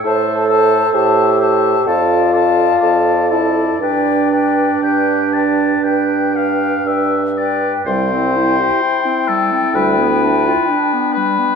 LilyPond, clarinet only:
\new Staff \with { instrumentName = "Clarinet" } { \time 4/4 \key c \major \tempo 4 = 64 c''8 c''8 c''8 c''8 a'8 a'8 a'8 a'8 | b'8 b'8 b'8 b'8 b'8 b'8 b'8 b'8 | g16 c'16 e'16 g'16 e'16 c'16 g16 c'16 g16 b16 d'16 f'16 d'16 b16 g16 b16 | }